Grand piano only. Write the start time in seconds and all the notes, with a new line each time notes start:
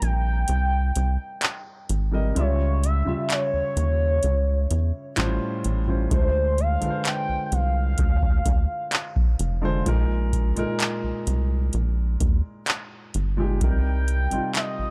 Already playing: C3 G3 A#4 D#5
2.11 C3 G3 A#4 D#5
2.35 C#3 G3 F4 E5
3.05 C#3 G3 F4 E5
5.16 A2 G3 C#4 F4 C5
5.87 A2 G3 C#4 F4 C5
6.10 D3 G#3 F4 C5
6.81 D3 G#3 F4 B4
6.90 C5
9.62 D3 G#3 F4 C5
9.85 A#2 G#3 D#4 A#4
10.56 A#2 G#3 D#4 A#4
13.37 A#2 G#3 D#4 G4
13.60 C3 G3 D#4 A#4
14.30 C3 G3 D#4 F4